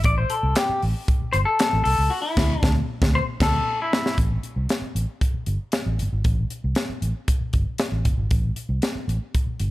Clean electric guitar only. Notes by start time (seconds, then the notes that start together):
0.05 D5
0.18 C5
0.30 A4
0.57 G4
1.33 C5
1.45 A4
1.84 A4
2.10 F#4
2.22 E4
3.15 C5
3.43 A4
3.82 E4